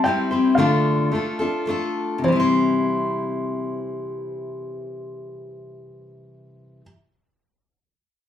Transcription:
0.04 G3 C4 E4 G5
0.09 C5
0.31 G3 C4 E4 C5
0.55 D3 A3 D4 F5
0.59 F4 A4
1.12 A3 D4 F4 A4
1.39 D4 F4 A4
1.67 A3 D4 F4 A4
2.18 C3
2.24 E3 C5
2.28 G3
2.32 C4 E4
2.40 C5

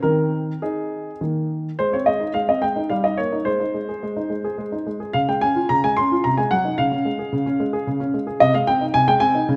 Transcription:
0.03 D#3 C4 A#4
0.62 D#4 G#4
1.21 D#3 A#3
1.79 G#3 C5
1.93 C4 C#5
2.06 G#3 D#5
2.20 D#4
2.34 G#3 F5
2.49 C4 D#5
2.62 G#3 G5
2.76 D#4
2.89 G3 F5
3.04 D#4 D#5
3.17 A#3 C#5
3.32 D#4
3.45 G#3 C5
3.60 D#4
3.74 G#3
3.89 G#4
4.03 G#3
4.17 D#4
4.30 G#3
4.44 G#4
4.58 G#3
4.72 D#4
4.87 G#3
5.00 G#4
5.13 C#3 F5
5.28 G#3 G5
5.41 C#4 G#5
5.55 F4
5.69 C#3 A#5
5.84 G#3 G#5
5.97 C#4 C6
6.12 F4
6.24 C3 A#5
6.37 G#3 G#5
6.51 F#3 F#5
6.65 D#4
6.78 C#3 F5
6.92 C#4
7.05 G#3
7.19 G#4
7.33 C#3
7.46 C#4
7.60 G#3
7.73 G#4
7.87 C#3
8.00 C#4
8.14 G#3
8.27 G#4
8.40 C3 D#5
8.54 G#3 F5
8.67 C4 G5
8.81 D#4
8.94 C3 G#5
9.08 G#3 G5
9.20 C4 G#5
9.35 D#4
9.49 C#3

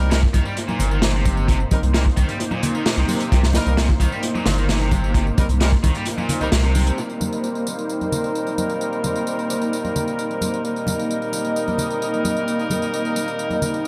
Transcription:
Already playing: A#3 D#4 C5
0.00 C2
0.11 A#2 G3 C4 D#4 A#4, snare, closed hi-hat, tambourine
0.23 kick, tambourine
0.34 C2 D#3, kick, closed hi-hat, tambourine
0.45 G3, tambourine
0.57 closed hi-hat, tambourine
0.68 A#2, tambourine, high conga
0.79 G1, closed hi-hat, tambourine, low conga
0.91 D#3, tambourine
1.02 A#2, snare, closed hi-hat, tambourine
1.14 C3, tambourine
1.25 kick, closed hi-hat, tambourine, high conga
1.37 tambourine
1.48 C3, kick, closed hi-hat, tambourine
1.60 tambourine
1.71 G3 C4 D#4 A#4, kick, closed hi-hat, tambourine, high conga, low conga
1.83 C2, closed hi-hat, tambourine
1.94 A#2 G3 C4 D#4 A#4, snare, closed hi-hat, tambourine
2.06 kick, tambourine
2.17 C2 D#3, kick, closed hi-hat, tambourine
2.29 G3, closed hi-hat, tambourine
2.40 closed hi-hat, tambourine
2.51 A#2, tambourine, high conga
2.63 closed hi-hat, tambourine, low conga
2.75 D#3, tambourine
2.85 A#2, snare, closed hi-hat, tambourine
2.97 C2 C3, tambourine
3.08 open hi-hat, tambourine, high conga
3.20 closed hi-hat, tambourine
3.31 C2 C3, kick, closed hi-hat, tambourine
3.43 snare, tambourine
3.53 G3 C4 D#4 A#4, snare, closed hi-hat, tambourine, high conga, low conga
3.66 C2, tambourine
3.77 A#2, snare, closed hi-hat, tambourine
3.89 kick, tambourine
4.00 C2 D#3, kick, closed hi-hat, tambourine
4.12 G3, tambourine
4.23 closed hi-hat, tambourine
4.35 A#2, tambourine, high conga
4.46 G1, snare, closed hi-hat, tambourine, low conga
4.57 D#3, tambourine
4.69 A#2, snare, closed hi-hat, tambourine
4.81 C3, tambourine
4.91 kick, closed hi-hat, tambourine, high conga
5.04 tambourine
5.14 C3, kick, closed hi-hat, tambourine
5.27 tambourine
5.38 G3 C4 D#4 A#4, kick, closed hi-hat, tambourine, high conga, low conga
5.49 C2, closed hi-hat, tambourine
5.61 A#2 G3 C4 D#4 A#4, snare, closed hi-hat, tambourine
5.72 kick, tambourine
5.83 C2 D#3, kick, closed hi-hat, tambourine
5.95 G3, closed hi-hat, tambourine
6.05 closed hi-hat, tambourine
6.18 A#2, tambourine, high conga
6.29 closed hi-hat, tambourine, low conga
6.41 C2 D#3 G3 C4 D#4 A#4, tambourine
6.52 C2 A#2, snare, closed hi-hat, tambourine
6.63 C3, tambourine
6.75 open hi-hat, tambourine, high conga
6.87 closed hi-hat, tambourine
6.98 G3 A#3 C4 D#4 A#4 C5, tambourine
7.10 tambourine
7.21 tambourine, high conga, low conga
7.33 tambourine
7.44 tambourine
7.55 tambourine
7.67 tambourine
7.79 tambourine
7.89 tambourine
8.01 tambourine, high conga
8.12 tambourine, low conga
8.24 tambourine
8.35 tambourine
8.47 tambourine
8.58 tambourine, high conga
8.70 tambourine
8.81 tambourine
8.93 tambourine
9.04 tambourine, high conga, low conga
9.15 tambourine
9.27 tambourine
9.39 tambourine
9.50 tambourine
9.62 tambourine
9.73 tambourine
9.85 tambourine, high conga
9.96 tambourine, low conga
10.08 tambourine
10.19 tambourine
10.31 tambourine
10.41 tambourine, high conga
10.54 tambourine
10.64 G3 C4 D#4 A#4 D#5, tambourine
10.76 tambourine
10.87 tambourine, high conga, low conga
10.99 tambourine
11.11 tambourine
11.22 tambourine
11.33 tambourine
11.45 tambourine
11.56 tambourine
11.68 tambourine, high conga
11.78 tambourine, low conga
11.90 tambourine
12.02 tambourine
12.14 tambourine
12.25 tambourine, high conga
12.36 tambourine
12.48 tambourine
12.59 tambourine
12.70 tambourine, high conga, low conga
12.82 tambourine
12.94 tambourine
13.05 tambourine
13.16 tambourine
13.28 tambourine
13.39 tambourine
13.50 tambourine, high conga
13.62 tambourine, low conga
13.74 tambourine

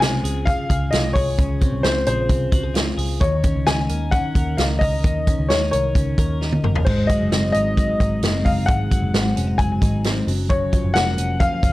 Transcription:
Already playing: C#3 C4
0.00 C2 F4 G#5, snare, closed hi-hat
0.24 C#2 G#4, closed hi-hat
0.45 F5, kick, closed hi-hat
0.69 C#2 G#4, kick, closed hi-hat
0.91 C2 F4 D#5, snare, closed hi-hat
1.13 C2 G#4 C#5, kick, open hi-hat
1.38 C#2 C#3, kick, closed hi-hat
1.61 C4, kick, closed hi-hat
1.72 C2
1.83 C#2 F4 C5, snare, closed hi-hat
2.06 A#1 G#4 C5, closed hi-hat
2.29 C2 C4, kick, closed hi-hat
2.52 C#2 F#4, kick, closed hi-hat
2.63 G#4
2.74 F4, snare, closed hi-hat
2.98 C#2 G#4, open hi-hat
3.20 D#2 D#3 C#5, kick, closed hi-hat
3.43 C#4, kick, closed hi-hat
3.56 C#2
3.66 C#2 D#4 G#5, snare, closed hi-hat
3.89 D#2 A#4, closed hi-hat
4.11 C#4 F#5, kick, closed hi-hat
4.35 D#2 A#4, kick, closed hi-hat
4.57 C#2 D#4 F5, snare, closed hi-hat
4.79 C#2 A#4 D#5, kick, open hi-hat
5.04 D#2 D#3, kick, closed hi-hat
5.27 C#4, kick, closed hi-hat
5.39 C#2
5.49 D#2 C#4 C#5, snare, closed hi-hat
5.61 D#4
5.71 C2 A#4 C#5, closed hi-hat
5.95 C#2 C#4, kick, closed hi-hat
6.18 D#2 A#4, kick, closed hi-hat
6.41 D#4, snare
6.52 high tom
6.63 F#1 A#4, mid tom
6.75 floor tom
6.85 G#1 G#2 C5, kick, crash
7.07 F#3 D#5, kick, closed hi-hat
7.21 F#1
7.32 F#1 C4, snare, closed hi-hat
7.52 G#1 D#4 D#5, closed hi-hat
7.77 F#3, kick, closed hi-hat
8.00 G#1 D#4, kick, closed hi-hat
8.23 F#1 A#3, snare, closed hi-hat
8.35 C4
8.45 F#1 D#4 F5, kick, open hi-hat
8.66 G#1 G#2 F#5, kick, closed hi-hat
8.91 F#3, kick, closed hi-hat
9.02 F#1
9.13 G#1 C4, snare, closed hi-hat
9.36 F1 C#4, closed hi-hat
9.47 D#4
9.58 F#1 F#3 G#5, kick, closed hi-hat
9.81 G#1 D#4, kick, closed hi-hat
10.04 C4, snare, closed hi-hat
10.27 F#1 F#2, open hi-hat
10.49 F#2 C#5, kick, closed hi-hat
10.72 F3, kick, closed hi-hat
10.84 F#1
10.94 F1 A#3 F#5, snare, closed hi-hat
11.18 F1 C#4, closed hi-hat
11.40 F3 F5, kick, closed hi-hat
11.63 F#1 C#4, kick, closed hi-hat

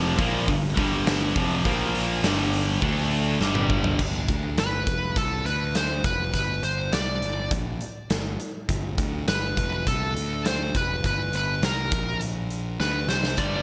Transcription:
Already playing: F1 F2 C3 F3
0.17 A#1 A#2 F3 A#3, kick, open hi-hat
0.21 F3
0.48 G1 G2 D3, kick, open hi-hat
0.75 G1 G2 D3 G3, kick, open hi-hat
1.07 snare, open hi-hat
1.35 F1 F2 C3 F3, kick, open hi-hat
1.64 A#1 A#2 F3 A#3, kick, open hi-hat
1.95 open hi-hat
2.22 G1 G2 D3 G3, snare, open hi-hat
2.53 open hi-hat
2.81 D2 D3 A3 D4, kick, open hi-hat
3.11 open hi-hat
3.39 G1 G2 D3 G3, snare
3.55 mid tom
3.70 kick
3.84 floor tom
3.99 G1, kick, crash
4.29 D2, kick, closed hi-hat
4.58 G1 B4, snare, closed hi-hat
4.87 F1, kick, closed hi-hat
5.16 C2 A4, kick, closed hi-hat
5.45 D2 B4, closed hi-hat
5.75 C5, snare, closed hi-hat
6.04 F1 B4, kick, closed hi-hat
6.34 G1 B4, kick, closed hi-hat
6.63 G1 C5, closed hi-hat
6.92 C2 D5, snare, closed hi-hat
7.22 G1, closed hi-hat
7.51 A#1, kick, closed hi-hat
7.81 muted picked electric bass stroke, closed hi-hat
8.10 G1, snare, closed hi-hat
8.40 muted picked electric bass stroke, closed hi-hat
8.69 G1, kick, closed hi-hat
8.98 D2, kick, closed hi-hat
9.28 G1 B4, snare, closed hi-hat
9.57 F1, kick, closed hi-hat
9.87 C2 A4, kick, closed hi-hat
10.15 D2, closed hi-hat
10.45 C5, snare, closed hi-hat
10.75 F1 B4, kick, closed hi-hat
11.04 G1 B4, kick, closed hi-hat
11.32 G1 B4, closed hi-hat
11.62 C2 A#4, snare, closed hi-hat
11.92 A#1, kick, closed hi-hat
12.21 closed hi-hat
12.50 closed hi-hat
12.80 D2 B4, snare
13.08 C2 C5, snare
13.23 snare
13.37 G1 G2 D3 G3 D5, kick, closed hi-hat

